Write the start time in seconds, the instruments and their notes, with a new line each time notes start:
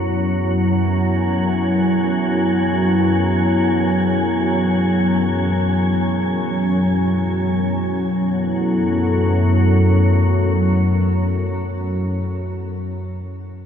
Already playing: synth drone F#2 F#3, analog synth pad F#3 B3 E4 G#4
0.38 synth texture G#5
7.72 synth drone F#2 F#3, analog synth pad F#3
7.92 analog synth pad B3
8.05 analog synth pad E4
8.19 analog synth pad A4